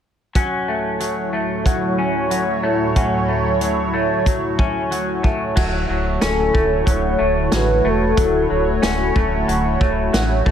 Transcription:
0.35 5.53 D2 medium
0.35 5.53 A2 medium
0.35 1.00 F#3 medium
0.35 5.53 F#3 medium
0.35 1.98 C#4 medium
0.35 5.53 E4 medium
0.35 5.53 C#5 medium
0.35 kick medium
0.35 closed hi-hat soft
0.68 1.33 A3 soft
1.00 1.65 F#3 soft
1.00 closed hi-hat medium
1.33 2.63 A3 soft
1.66 2.30 F#3 medium
1.66 kick medium
1.66 closed hi-hat soft
1.98 2.96 C#4 soft
2.30 2.96 F#3 soft
2.30 closed hi-hat medium
2.63 3.28 A3 medium
2.96 3.61 F#3 medium
2.96 4.58 C#4 medium
2.96 kick medium
2.96 closed hi-hat soft
3.29 3.93 A3 soft
3.61 4.26 F#3 soft
3.61 closed hi-hat medium
3.94 5.23 A3 medium
4.26 4.91 F#3 medium
4.26 kick medium
4.26 closed hi-hat soft
4.59 6.21 C#4 medium
4.59 kick medium
4.91 5.55 F#3 medium
4.91 closed hi-hat medium
5.23 6.53 A3 soft
5.23 kick medium
5.56 5.85 D1 medium
5.56 10.51 D3 medium
5.56 5.88 F#3 medium
5.56 10.51 A3 medium
5.56 10.51 E4 medium
5.56 10.51 F#4 medium
5.56 10.51 C#5 medium
5.56 kick medium
5.56 crash medium
5.89 6.18 D1 medium
5.89 6.85 F#3 soft
6.21 6.50 D1 medium
6.21 8.81 C#4 medium
6.21 6.91 A4 medium
6.21 snare medium
6.21 closed hi-hat medium
6.54 6.83 D1 medium
6.54 7.18 A3 medium
6.54 kick medium
6.86 7.16 D1 medium
6.86 7.51 F#3 medium
6.86 7.57 C#5 loud
6.86 kick medium
6.86 closed hi-hat medium
7.19 7.48 D1 loud
7.19 7.84 A3 medium
7.52 7.81 A1 medium
7.52 8.16 F#3 soft
7.52 7.89 B4 loud
7.52 snare medium
7.52 closed hi-hat medium
7.85 8.14 E1 medium
7.85 9.15 A3 medium
7.85 9.17 A4 medium
8.17 8.46 D1 loud
8.17 8.49 F#3 medium
8.17 kick medium
8.17 closed hi-hat soft
8.50 8.79 D1 medium
8.50 9.47 F#3 soft
8.82 9.11 D1 medium
8.82 10.51 C#4 medium
8.82 snare medium
8.82 closed hi-hat medium
9.16 9.44 D1 medium
9.16 9.80 A3 soft
9.16 kick medium
9.48 9.76 D1 medium
9.48 10.12 F#3 medium
9.48 closed hi-hat medium
9.81 10.09 D1 medium
9.81 10.45 A3 soft
9.81 kick medium
10.13 10.42 A1 medium
10.13 10.51 F#3 medium
10.13 snare medium
10.13 closed hi-hat medium
10.46 10.51 F#1 medium
10.46 10.51 A3 medium
10.46 kick medium

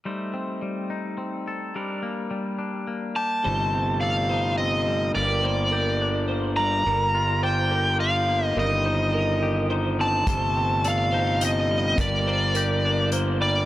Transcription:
0.05 0.61 G3 soft
0.05 1.74 A3 soft
0.05 1.74 D#4 soft
0.05 1.74 C5 soft
0.34 1.16 C4 soft
0.62 1.74 G3 soft
0.90 1.75 D#4 soft
1.18 1.75 C4 soft
1.48 1.76 A4 soft
1.75 2.30 G3 soft
1.75 3.44 G3 soft
1.75 3.44 D4 soft
1.75 3.44 A#4 soft
2.03 2.86 A#3 soft
2.31 3.43 G3 soft
2.59 3.44 D4 soft
2.87 3.45 A#3 soft
3.16 3.45 G4 soft
3.16 4.04 A5 medium
3.44 5.12 G1 soft
3.44 5.14 C3 soft
3.44 4.86 G3 soft
3.44 5.15 A3 soft
3.44 5.14 D#4 soft
3.44 4.02 C5 medium
3.74 4.58 C4 soft
4.01 5.16 A4 soft
4.01 4.29 D5 soft
4.01 4.57 F5 medium
4.29 5.16 D#4 soft
4.29 4.57 C5 soft
4.58 5.16 C4 soft
4.58 5.11 D#5 medium
4.58 5.15 D#5 soft
4.87 5.14 G3 soft
5.15 6.83 G1 soft
5.15 8.54 D3 soft
5.15 6.58 G3 soft
5.15 8.54 A#3 soft
5.15 8.55 G4 soft
5.15 5.45 A#4 medium
5.15 6.25 D5 medium
5.42 6.29 A#3 soft
5.42 5.72 C5 soft
5.71 7.18 G4 soft
5.71 6.29 A#4 medium
6.02 7.14 D4 soft
6.28 6.87 A#3 soft
6.28 6.56 C5 soft
6.57 6.86 G3 soft
6.57 7.43 D5 soft
6.57 7.43 A#5 medium
6.87 8.54 G1 medium
6.87 8.29 G3 soft
6.87 7.44 A#4 medium
7.15 7.98 F4 medium
7.43 7.72 C5 medium
7.43 8.57 D5 medium
7.43 7.96 G5 medium
7.71 8.57 G4 soft
7.71 8.00 A#4 soft
7.99 8.57 F4 soft
7.99 8.57 D5 medium
7.99 8.46 F5 medium
8.29 8.57 A#3 soft
8.46 8.59 D#5 medium
8.57 10.25 G1 medium
8.57 10.27 D#3 soft
8.57 10.00 G3 soft
8.57 10.27 C4 soft
8.57 11.96 D#4 medium
8.57 8.85 A#4 medium
8.57 9.68 D#5 medium
8.84 9.70 D#4 medium
8.84 9.17 C5 soft
9.14 9.71 A#4 medium
9.43 10.28 G4 soft
9.70 10.28 D#4 soft
9.70 9.99 C5 medium
9.99 10.28 C4 medium
9.99 10.27 D5 soft
9.99 10.88 A5 medium
10.27 11.95 G1 medium
10.27 11.98 C3 soft
10.27 11.70 G3 soft
10.27 11.98 A3 soft
10.27 10.84 C5 medium
10.27 kick medium
10.27 closed hi-hat soft
10.57 11.41 C4 soft
10.84 11.99 A4 medium
10.84 11.12 D5 medium
10.84 11.45 F5 medium
10.84 closed hi-hat soft
11.12 11.99 D#4 soft
11.12 11.41 C5 medium
11.41 11.99 C4 soft
11.41 11.99 D#5 medium
11.41 12.00 D#5 medium
11.41 closed hi-hat soft
11.71 11.99 G3 medium
11.98 13.65 G1 medium
11.98 13.65 G2 soft
11.98 13.65 D3 soft
11.98 13.65 A#3 soft
11.98 13.65 G4 medium
11.98 12.30 A#4 medium
11.98 13.10 D5 medium
11.98 kick medium
11.98 closed hi-hat soft
12.27 13.11 A#3 medium
12.27 12.56 C5 medium
12.55 13.65 G4 medium
12.55 13.12 A#4 medium
12.55 closed hi-hat soft
12.85 13.65 D4 soft
13.12 13.65 A#3 soft
13.12 13.40 C5 medium
13.12 closed hi-hat soft
13.41 13.65 G3 medium
13.41 13.65 D5 medium

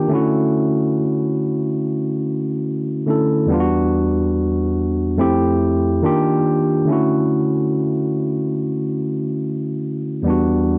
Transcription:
0.00 0.10 D#3 medium
0.00 0.11 A#3 medium
0.00 0.11 D4 medium
0.00 0.12 F4 medium
0.00 0.12 G4 medium
0.08 3.01 D3 medium
0.08 3.02 A3 medium
0.08 3.03 C#4 medium
0.13 3.04 E4 medium
0.13 3.05 F#4 medium
3.06 3.49 D3 medium
3.06 3.49 A3 soft
3.06 3.50 C#4 soft
3.06 3.50 E4 soft
3.06 3.51 A4 medium
3.46 5.13 E2 medium
3.46 5.14 G3 medium
3.46 5.15 B3 medium
3.52 5.16 D4 medium
3.52 3.59 F4 medium
3.60 5.20 F#4 medium
5.17 6.02 F2 medium
5.17 6.02 A3 medium
5.17 6.03 C4 medium
5.17 6.03 E4 medium
5.17 6.04 G4 medium
6.02 6.87 D#3 medium
6.02 6.87 A#3 medium
6.02 6.88 D4 medium
6.02 6.88 F4 medium
6.02 6.88 G4 medium
6.85 10.20 D3 medium
6.85 10.21 A3 medium
6.89 10.22 C#4 medium
6.89 10.23 E4 medium
6.89 10.24 F#4 medium
10.22 10.78 E2 medium
10.22 10.78 G3 medium
10.22 10.78 B3 medium
10.28 10.78 D4 medium
10.28 10.69 F#4 medium

